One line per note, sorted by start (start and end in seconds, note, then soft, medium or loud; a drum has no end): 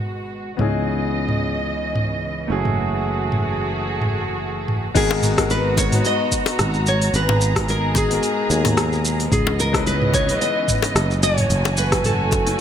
0.00 0.57 G#1 medium
0.00 0.55 B2 medium
0.00 0.55 G#3 medium
0.00 0.55 A#3 medium
0.00 0.55 B3 medium
0.00 0.56 D#4 medium
0.00 0.55 F#4 medium
0.00 0.57 F#4 medium
0.00 0.57 G#4 medium
0.00 0.28 A#4 medium
0.57 2.48 C#2 medium
0.57 2.48 C#3 medium
0.57 4.92 E3 medium
0.57 2.46 B3 medium
0.57 2.47 C#4 medium
0.57 2.47 D#4 medium
0.57 2.48 E4 medium
0.57 2.48 D#5 medium
0.57 mid tom medium
0.61 2.48 G#4 medium
1.28 mid tom medium
1.95 mid tom medium
2.48 4.93 F#1 medium
2.48 4.91 A3 medium
2.48 4.93 A3 medium
2.48 4.92 C#4 medium
2.48 4.92 E4 medium
2.48 4.93 F#4 medium
2.48 4.93 G#4 medium
2.52 4.93 G#4 medium
2.65 mid tom medium
3.32 mid tom medium
4.02 mid tom medium
4.68 mid tom medium
4.95 6.00 G#1 loud
4.95 9.27 B2 medium
4.95 5.31 G#3 medium
4.95 9.27 G#3 medium
4.95 5.31 B3 medium
4.95 5.32 D#4 medium
4.95 7.11 F#4 medium
4.95 5.32 F#4 medium
4.95 5.50 G#4 medium
4.95 5.32 A#4 loud
4.95 9.28 A#5 medium
4.95 kick loud
4.95 open hi-hat soft
4.95 crash loud
4.95 shaker soft
5.11 high bongo loud
5.23 mid tom medium
5.23 shaker medium
5.37 5.88 G#3 medium
5.37 5.88 B3 medium
5.37 5.89 D#4 medium
5.37 5.89 F#4 medium
5.37 5.89 A#4 loud
5.37 kick loud
5.37 cross-stick medium
5.37 open hi-hat medium
5.37 shaker soft
5.50 5.78 B4 medium
5.50 open hi-hat soft
5.50 shaker soft
5.77 6.06 C#5 loud
5.77 kick loud
5.77 high bongo medium
5.77 shaker medium
5.90 7.51 G#3 medium
5.90 7.52 B3 medium
5.90 7.52 D#4 medium
5.90 7.53 F#4 medium
5.90 mid tom medium
5.90 open hi-hat medium
5.90 shaker soft
5.94 7.53 B4 medium
6.05 6.56 D#5 loud
6.05 open hi-hat soft
6.05 shaker soft
6.32 kick medium
6.32 shaker medium
6.46 open hi-hat medium
6.46 high bongo medium
6.46 shaker soft
6.59 7.09 G#1 medium
6.59 cross-stick medium
6.59 mid tom medium
6.59 open hi-hat soft
6.59 shaker soft
6.74 shaker soft
6.86 7.15 C#5 loud
6.86 shaker medium
7.02 open hi-hat medium
7.02 shaker soft
7.14 8.18 G#1 medium
7.14 9.30 G#4 medium
7.14 7.69 B4 loud
7.14 open hi-hat soft
7.14 shaker soft
7.29 mid tom medium
7.29 high bongo medium
7.41 shaker medium
7.55 8.06 G#3 medium
7.55 8.07 B3 medium
7.55 8.07 D#4 medium
7.55 8.07 F#4 medium
7.55 8.08 A#4 medium
7.55 kick loud
7.55 cross-stick medium
7.55 open hi-hat medium
7.55 shaker soft
7.68 7.94 A#4 medium
7.68 open hi-hat soft
7.68 shaker soft
7.95 9.02 G#4 medium
7.95 kick loud
7.95 mid tom medium
7.95 high bongo medium
7.95 shaker medium
8.08 9.29 G#3 medium
8.08 9.30 B3 medium
8.08 9.31 D#4 medium
8.08 9.31 F#4 medium
8.08 open hi-hat medium
8.08 shaker soft
8.13 9.32 A#4 medium
8.23 open hi-hat soft
8.23 shaker soft
8.50 9.27 D#2 medium
8.50 shaker medium
8.65 mid tom medium
8.65 open hi-hat medium
8.65 high bongo medium
8.65 shaker soft
8.77 cross-stick medium
8.77 open hi-hat soft
8.77 shaker soft
8.93 shaker soft
9.05 shaker medium
9.20 open hi-hat medium
9.20 shaker soft
9.32 10.36 C#2 loud
9.32 11.21 C#3 medium
9.32 12.61 E3 medium
9.32 11.21 B3 medium
9.32 9.60 G#4 medium
9.32 11.21 D#5 medium
9.32 kick loud
9.32 mid tom medium
9.32 open hi-hat soft
9.32 shaker soft
9.47 high bongo medium
9.60 9.87 A#4 loud
9.60 shaker medium
9.73 10.25 G#3 medium
9.73 10.25 C#4 medium
9.73 10.25 D#4 medium
9.73 10.25 E4 medium
9.73 10.26 B4 medium
9.73 kick loud
9.73 cross-stick medium
9.73 open hi-hat medium
9.73 shaker soft
9.87 10.14 B4 loud
9.87 open hi-hat soft
9.87 shaker soft
10.02 mid tom medium
10.14 10.41 C#5 loud
10.14 kick loud
10.14 high bongo medium
10.14 shaker medium
10.27 11.20 G#3 medium
10.27 11.21 C#4 medium
10.27 11.21 D#4 medium
10.27 11.22 E4 medium
10.27 open hi-hat medium
10.27 shaker soft
10.31 11.22 B4 medium
10.41 11.19 D#5 loud
10.41 open hi-hat soft
10.41 shaker soft
10.68 kick medium
10.68 mid tom medium
10.68 shaker medium
10.82 open hi-hat medium
10.82 high bongo medium
10.82 shaker soft
10.95 11.45 F#1 medium
10.95 cross-stick medium
10.95 open hi-hat soft
10.95 shaker soft
11.11 shaker soft
11.23 12.61 A3 medium
11.23 12.61 F#4 medium
11.23 11.78 C#5 loud
11.23 12.61 G#5 medium
11.23 shaker medium
11.38 mid tom medium
11.38 open hi-hat soft
11.38 shaker soft
11.50 12.54 F#1 loud
11.50 open hi-hat soft
11.50 shaker soft
11.65 high bongo loud
11.65 shaker soft
11.77 12.06 B4 medium
11.77 shaker medium
11.91 12.43 A3 medium
11.91 12.43 C#4 medium
11.91 12.43 E4 medium
11.91 12.44 F#4 medium
11.91 12.44 G#5 medium
11.91 kick loud
11.91 cross-stick medium
11.91 open hi-hat medium
11.91 shaker soft
12.04 12.61 A4 medium
12.04 mid tom medium
12.04 open hi-hat soft
12.04 shaker soft
12.32 kick loud
12.32 high bongo medium
12.32 shaker medium
12.46 12.61 A3 medium
12.46 12.61 C#4 medium
12.46 12.61 E4 medium
12.46 12.61 F#4 medium
12.46 12.61 G#5 medium
12.46 open hi-hat medium
12.46 shaker soft